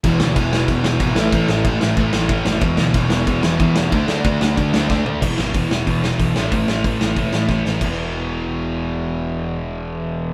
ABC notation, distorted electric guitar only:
X:1
M:4/4
L:1/8
Q:1/4=185
K:A
V:1 name="Distorted electric guitar" clef=bass
[E,,B,,E,] [E,,B,,E,] [E,,B,,E,] [E,,B,,E,] [E,,B,,E,] [E,,B,,E,] [E,,B,,E,] [A,,E,A,] | [A,,E,A,] [A,,E,A,] [A,,E,A,] [A,,E,A,] [A,,E,A,] [A,,E,A,] [A,,E,A,] [A,,E,A,] | [E,,B,,E,] [E,,B,,E,] [E,,B,,E,] [E,,B,,E,] [E,,B,,E,] [E,,B,,E,] [E,,B,,E,] [E,,B,,E,] | [D,A,D] [D,A,D] [D,A,D] [D,A,D] [D,A,D] [D,A,D] [D,A,D] [D,A,D] |
[E,,B,,E,] [E,,B,,E,] [E,,B,,E,] [E,,B,,E,] [E,,B,,E,] [E,,B,,E,] [E,,B,,E,] [A,,E,A,] | [A,,E,A,] [A,,E,A,] [A,,E,A,] [A,,E,A,] [A,,E,A,] [A,,E,A,] [A,,E,A,] [A,,E,A,] | [E,,B,,E,]8- | [E,,B,,E,]8 |]